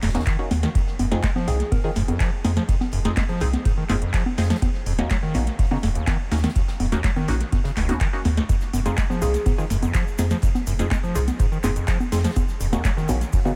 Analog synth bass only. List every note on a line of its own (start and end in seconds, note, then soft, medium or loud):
0.02 0.17 D#1 medium
0.51 0.66 D#2 medium
0.99 1.14 F1 loud
1.48 1.62 C2 medium
1.96 2.11 F1 medium
2.44 2.59 F2 medium
2.93 3.08 F1 loud
3.41 3.56 C2 medium
3.90 4.04 F1 medium
4.38 4.53 F2 medium
4.86 5.01 D#1 loud
5.35 5.49 A#1 medium
5.83 5.98 D#1 medium
6.32 6.46 D#2 medium
6.80 6.95 D#1 loud
7.28 7.43 A#1 medium
7.77 7.91 D#1 medium
8.25 8.40 D#2 medium
8.73 8.88 F1 loud
9.22 9.37 C2 medium
9.70 9.85 F1 medium
10.19 10.33 F2 medium
10.67 10.82 F1 loud
11.15 11.30 C2 medium
11.64 11.79 F1 medium
12.12 12.27 F2 medium
12.60 12.75 D#1 loud
13.09 13.24 A#1 medium